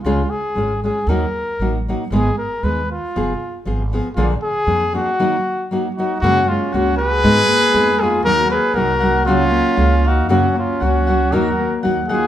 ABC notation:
X:1
M:2/4
L:1/8
Q:1/4=117
K:Ebm
V:1 name="Trumpet"
F A2 A | B3 z | A B c F- | F2 z2 |
F A2 G- | G2 z G | [K:F#] F E F B- | B3 G |
A B A2 | E3 F | F E F2 | A2 z G |]
V:2 name="Trumpet"
z4 | z4 | z4 | z4 |
z4 | z3 E | [K:F#] C C C G- | G3 E |
F G F2 | C3 D | C C C2 | F2 z E |]
V:3 name="Harp"
z4 | z4 | z4 | z4 |
z4 | z4 | [K:F#] F, G, F F | G, A, G G |
F, A, f f | F, A, e e | F, A, f f | F, A, f f |]
V:4 name="Nylon-string guitar"
[D,A,DFA] z [A,DFA] [A,DFA] | [E,G,B,EG] z [G,B,EG] [G,B,EG] | [A,,E,A,CEA] z [A,CEA] z | [F,CFA] z [F,CFA] [F,CFA] |
[B,,=D,F,B,=DA] z [F,B,DA] [F,B,DA] | [E,G,B,EG] z [G,B,EG] [G,B,EG] | [K:F#] [F,,C,G,A,CF] z [G,A,CF] z | [G,,D,G,B,DA] z [G,B,DA] [G,B,DA] |
[D,F,A,DF] z [F,A,DF] [F,A,DF] | [C,F,A,CF] z [G,CEG] z | [F,,C,F,A,CF] z [F,A,CF] [F,A,CF] | [D,F,A,DF] z [F,A,DF] [F,A,DF] |]
V:5 name="Upright bass" clef=bass
D,, z A,,,2 | E,, z =A,,,2 | A,,, z E,,2 | F,,, z A,,,2 |
B,,, z F,,2 | z4 | [K:F#] F,,2 C,,2 | G,,2 E,,2 |
D,,2 ^B,,,2 | C,,2 C,,2 | F,,2 C,,2 | D,,2 D,,2 |]